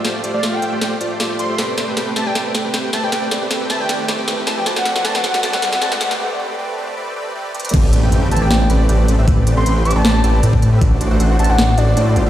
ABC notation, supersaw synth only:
X:1
M:4/4
L:1/16
Q:"Swing 16ths" 1/4=156
K:Am
V:1 name="Supersaw synth"
[A,FGcd]2 [A,FGcd] [A,FGcf] [A,FGcf]2 [A,FGce] [A,FGcd] [A,FGcd] z [A,FGcd]2 [A,FGcd]2 [A,FGcd] [A,FGce] | [A,CGBd]2 [A,CGBd] [A,CGBg] [A,CGBg]2 [A,CGBe] [A,CGBd] [A,CGBd]2 [A,CGBd] [A,CGBg] [A,CGBg]2 [A,CGBe] [A,CGBd] | [A,CGBd]2 [A,CGBd] [A,CGBg] [A,CGBg]2 [A,CGBe] [A,CGBd] [A,CGBd]2 [A,CGBd] [A,CGBg] [A,CGBg]2 [A,CGBe] [A,CGBd] | [A,C^FBd]2 [A,CFBd] [A,CFB^f] [A,CFBd]2 [A,CFBd] [A,CFBf] [A,CFBd]2 [A,CFBd] [A,CFBf] [A,CFBd]2 [A,CGBd] [A,CGBg] |
[A,CGBd]2 [A,CGBd]2 [A,CGBd]2 [A,CGBd]2 [A,CGBd]2 [A,CGBd]2 [A,CGBd]2 [A,CGBd]2 | [A,CGBd]2 [A,CGBd] [A,CGBg] [A,CGBg]2 [A,CGBe] [A,CGBd] [A,CGBd] z [A,CGBd]2 [A,CGBd]2 [A,CGBd] [A,CGBe] | [A,CGBd]2 [A,CGBd] [A,CGBg] [A,CGBg]2 [A,CGBe] [A,CGBd] [A,CGBd] z [A,CGBd]2 [A,CGBd]2 [A,CGBd] [A,CGBe] | [A,D^Fcd]2 [A,DFcd] [A,DFc^f] [A,DFcf]2 [A,DFce] [A,DFcd] [A,DFcd] z [A,DFcd]2 [A,DFcd]2 [A,=FGcd] [A,FGce] |]